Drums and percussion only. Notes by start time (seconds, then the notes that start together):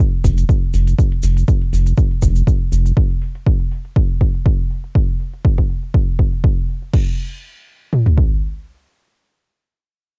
0.24 kick, open hi-hat, shaker
0.38 closed hi-hat, shaker
0.49 kick, shaker
0.74 open hi-hat, shaker
0.87 closed hi-hat, shaker
0.99 kick, shaker
1.12 closed hi-hat
1.23 open hi-hat, shaker
1.37 closed hi-hat, shaker
1.48 kick, shaker
1.62 closed hi-hat
1.73 open hi-hat, shaker
1.86 closed hi-hat, shaker
1.97 kick, shaker
2.11 closed hi-hat
2.22 kick, open hi-hat, shaker
2.36 closed hi-hat, shaker
2.47 kick, shaker
2.72 open hi-hat, shaker
2.86 closed hi-hat, shaker
2.97 kick
3.10 closed hi-hat
3.22 open hi-hat
3.35 closed hi-hat
3.46 kick
3.60 closed hi-hat
3.71 open hi-hat
3.85 closed hi-hat
3.96 kick
4.21 kick, open hi-hat
4.34 closed hi-hat
4.46 kick
4.70 open hi-hat
4.84 closed hi-hat
4.95 kick
5.09 closed hi-hat
5.20 open hi-hat
5.33 closed hi-hat
5.45 kick
5.58 kick
5.70 open hi-hat
5.83 closed hi-hat
5.94 kick
6.08 closed hi-hat
6.19 kick, open hi-hat
6.33 closed hi-hat
6.44 kick
6.58 closed hi-hat
6.69 open hi-hat
6.82 closed hi-hat
6.94 kick, crash
7.93 mid tom
8.06 floor tom
8.18 kick